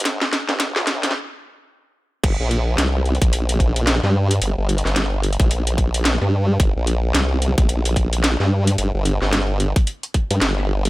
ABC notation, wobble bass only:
X:1
M:4/4
L:1/16
Q:"Swing 16ths" 1/4=110
K:Gm
V:1 name="Wobble bass" clef=bass
G,,, z2 G,,,2 C,,3 z8 | G,,, B,,,3 C,,3 B,,,6 G,,3 | G,,, G,,,2 G,,,4 B,,,6 G,,3 | G,,, B,,,3 C,,3 B,,,6 G,,3 |
G,,, G,,,2 G,,,4 z4 G,, G,,,4 |]